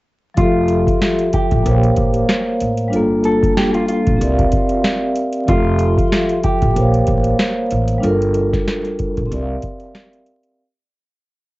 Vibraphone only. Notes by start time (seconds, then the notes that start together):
0.35 F3 F4
0.39 G4 A4
0.43 E5
1.63 A#3 A#4
1.67 C5 C#5
1.71 F5
2.88 G3 D4
2.92 F4 A4
2.96 A#3
4.16 C4 G4
4.20 A#4 D5
4.24 E5
4.31 F5
5.45 F3 F4
5.49 G4 A4
5.53 E5
6.73 A#3 A#4
6.77 C5 C#5
6.81 F5
7.98 G3 D4
8.03 F4 A4
8.07 A#4
9.27 C4 G4
9.31 A#4 D5
9.35 E5
9.42 F5